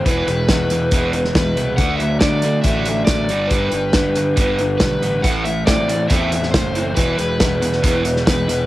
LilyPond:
<<
  \new Staff \with { instrumentName = "Overdriven electric guitar" } { \time 4/4 \key e \minor \tempo 4 = 139 b'8 b'2~ b'8 b'4 | fis''8 e''8 d''4 e''4 d''4 | b'8 b'2~ b'8 b'4 | fis''8 e''8 d''4 e''4 c''4 |
b'8 b'2~ b'8 b'4 | }
  \new Staff \with { instrumentName = "Overdriven electric guitar" } { \clef bass \time 4/4 \key e \minor e8 gis8 b8 e8 b8 e8 gis8 b8 | d8 fis8 a8 d8 a8 d8 fis8 g,8 | g,8 g8 b8 d8 b8 d8 g8 b8 | a,8 a8 c'8 e8 c'8 e8 a8 c'8 |
e8 gis8 b8 e8 b8 e8 gis8 b8 | }
  \new Staff \with { instrumentName = "Overdriven electric guitar" } { \clef bass \time 4/4 \key e \minor <e, b, e>8 <e, b,>8 <e, b,>8 <e, b,>8 <e, b, e>8 <e, b,>8 <e, b,>8 <e, b,>8 | <d a d'>8 <d a>8 <d a>8 <d a>8 <d a d'>8 <d a>8 <d a>8 <g, d g>8 | <g, d g>8 <g, d>8 <g, d>8 <g, d>8 <g, d g>8 <g, d>8 <g, d>8 <g, d>8 | <a, e a>8 <a, e>8 <a, e>8 <a, e>8 <a, e a>8 <a, e>8 <a, e>8 <a, e>8 |
<e, b, e>8 <e, b,>8 <e, b,>8 <e, b,>8 <e, b, e>8 <e, b,>8 <e, b,>8 <e, b,>8 | }
  \new Staff \with { instrumentName = "Fingered electric bass" } { \clef bass \time 4/4 \key e \minor e,,8 e,,8 e,4 e,,4 e,8 c,8 | d,4 d4 a,,4 a,,8 g,,8~ | g,,8 g,,8 g,4 g,,4 b,,8 a,,8 | a,,4 a,4 e,4 fis,,4 |
e,,8 e,,8 e,4 e,,4 e,8 e,,8 | }
  \new DrumStaff \with { instrumentName = "Drums" } \drummode { \time 4/4 <hh bd>8 hh8 <hh bd sn>8 hh8 <hh bd>8 hh16 sn16 <hh bd sn>8 hh8 | <hh bd>8 hh8 <hh bd sn>8 hh8 <hh bd>8 hh8 <hh bd sn>8 hh8 | <hh bd>8 hh8 <hh bd sn>8 hh8 <hh bd>8 hh8 <hh bd sn>8 hh8 | <hh bd>8 hh8 <hh bd sn>8 hh8 <hh bd>8 hh16 sn16 <hh bd sn>8 hh8 |
<hh bd>8 hh8 <hh bd sn>8 hh16 sn16 <hh bd>8 hh16 sn16 <hh bd sn>8 hh8 | }
>>